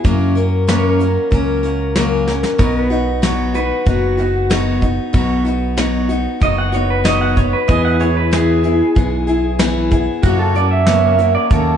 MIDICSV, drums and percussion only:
0, 0, Header, 1, 2, 480
1, 0, Start_track
1, 0, Key_signature, 5, "major"
1, 0, Tempo, 636943
1, 35, Time_signature, 4, 2, 24, 8
1, 8871, End_track
2, 0, Start_track
2, 0, Title_t, "Drums"
2, 35, Note_on_c, 9, 36, 105
2, 35, Note_on_c, 9, 42, 80
2, 111, Note_off_c, 9, 36, 0
2, 111, Note_off_c, 9, 42, 0
2, 278, Note_on_c, 9, 42, 58
2, 353, Note_off_c, 9, 42, 0
2, 515, Note_on_c, 9, 38, 94
2, 515, Note_on_c, 9, 42, 77
2, 591, Note_off_c, 9, 38, 0
2, 591, Note_off_c, 9, 42, 0
2, 756, Note_on_c, 9, 42, 63
2, 832, Note_off_c, 9, 42, 0
2, 993, Note_on_c, 9, 42, 80
2, 994, Note_on_c, 9, 36, 87
2, 1069, Note_off_c, 9, 36, 0
2, 1069, Note_off_c, 9, 42, 0
2, 1236, Note_on_c, 9, 42, 60
2, 1311, Note_off_c, 9, 42, 0
2, 1474, Note_on_c, 9, 38, 101
2, 1474, Note_on_c, 9, 42, 84
2, 1549, Note_off_c, 9, 38, 0
2, 1549, Note_off_c, 9, 42, 0
2, 1714, Note_on_c, 9, 38, 53
2, 1789, Note_off_c, 9, 38, 0
2, 1833, Note_on_c, 9, 38, 76
2, 1908, Note_off_c, 9, 38, 0
2, 1954, Note_on_c, 9, 36, 99
2, 1954, Note_on_c, 9, 42, 71
2, 2029, Note_off_c, 9, 36, 0
2, 2030, Note_off_c, 9, 42, 0
2, 2196, Note_on_c, 9, 42, 58
2, 2271, Note_off_c, 9, 42, 0
2, 2434, Note_on_c, 9, 38, 97
2, 2434, Note_on_c, 9, 42, 73
2, 2509, Note_off_c, 9, 38, 0
2, 2509, Note_off_c, 9, 42, 0
2, 2672, Note_on_c, 9, 42, 60
2, 2747, Note_off_c, 9, 42, 0
2, 2913, Note_on_c, 9, 36, 97
2, 2913, Note_on_c, 9, 42, 70
2, 2988, Note_off_c, 9, 42, 0
2, 2989, Note_off_c, 9, 36, 0
2, 3152, Note_on_c, 9, 42, 61
2, 3228, Note_off_c, 9, 42, 0
2, 3395, Note_on_c, 9, 38, 101
2, 3395, Note_on_c, 9, 42, 82
2, 3471, Note_off_c, 9, 38, 0
2, 3471, Note_off_c, 9, 42, 0
2, 3634, Note_on_c, 9, 36, 71
2, 3637, Note_on_c, 9, 42, 63
2, 3710, Note_off_c, 9, 36, 0
2, 3712, Note_off_c, 9, 42, 0
2, 3874, Note_on_c, 9, 36, 101
2, 3875, Note_on_c, 9, 42, 83
2, 3950, Note_off_c, 9, 36, 0
2, 3951, Note_off_c, 9, 42, 0
2, 4116, Note_on_c, 9, 42, 61
2, 4191, Note_off_c, 9, 42, 0
2, 4352, Note_on_c, 9, 38, 99
2, 4352, Note_on_c, 9, 42, 80
2, 4427, Note_off_c, 9, 38, 0
2, 4427, Note_off_c, 9, 42, 0
2, 4593, Note_on_c, 9, 42, 66
2, 4669, Note_off_c, 9, 42, 0
2, 4835, Note_on_c, 9, 36, 98
2, 4835, Note_on_c, 9, 42, 77
2, 4910, Note_off_c, 9, 36, 0
2, 4910, Note_off_c, 9, 42, 0
2, 5074, Note_on_c, 9, 42, 63
2, 5149, Note_off_c, 9, 42, 0
2, 5312, Note_on_c, 9, 38, 104
2, 5312, Note_on_c, 9, 42, 83
2, 5387, Note_off_c, 9, 38, 0
2, 5387, Note_off_c, 9, 42, 0
2, 5553, Note_on_c, 9, 42, 60
2, 5554, Note_on_c, 9, 36, 79
2, 5628, Note_off_c, 9, 42, 0
2, 5629, Note_off_c, 9, 36, 0
2, 5794, Note_on_c, 9, 36, 106
2, 5794, Note_on_c, 9, 42, 77
2, 5870, Note_off_c, 9, 36, 0
2, 5870, Note_off_c, 9, 42, 0
2, 6032, Note_on_c, 9, 42, 57
2, 6108, Note_off_c, 9, 42, 0
2, 6274, Note_on_c, 9, 38, 101
2, 6274, Note_on_c, 9, 42, 72
2, 6350, Note_off_c, 9, 38, 0
2, 6350, Note_off_c, 9, 42, 0
2, 6512, Note_on_c, 9, 42, 56
2, 6587, Note_off_c, 9, 42, 0
2, 6754, Note_on_c, 9, 42, 69
2, 6755, Note_on_c, 9, 36, 92
2, 6829, Note_off_c, 9, 42, 0
2, 6830, Note_off_c, 9, 36, 0
2, 6992, Note_on_c, 9, 42, 58
2, 7067, Note_off_c, 9, 42, 0
2, 7230, Note_on_c, 9, 38, 111
2, 7230, Note_on_c, 9, 42, 79
2, 7305, Note_off_c, 9, 38, 0
2, 7305, Note_off_c, 9, 42, 0
2, 7470, Note_on_c, 9, 42, 60
2, 7473, Note_on_c, 9, 36, 77
2, 7546, Note_off_c, 9, 42, 0
2, 7549, Note_off_c, 9, 36, 0
2, 7710, Note_on_c, 9, 42, 83
2, 7713, Note_on_c, 9, 36, 102
2, 7785, Note_off_c, 9, 42, 0
2, 7788, Note_off_c, 9, 36, 0
2, 7953, Note_on_c, 9, 42, 61
2, 8028, Note_off_c, 9, 42, 0
2, 8188, Note_on_c, 9, 38, 100
2, 8188, Note_on_c, 9, 42, 77
2, 8264, Note_off_c, 9, 38, 0
2, 8264, Note_off_c, 9, 42, 0
2, 8430, Note_on_c, 9, 42, 64
2, 8505, Note_off_c, 9, 42, 0
2, 8671, Note_on_c, 9, 42, 73
2, 8672, Note_on_c, 9, 36, 99
2, 8747, Note_off_c, 9, 42, 0
2, 8748, Note_off_c, 9, 36, 0
2, 8871, End_track
0, 0, End_of_file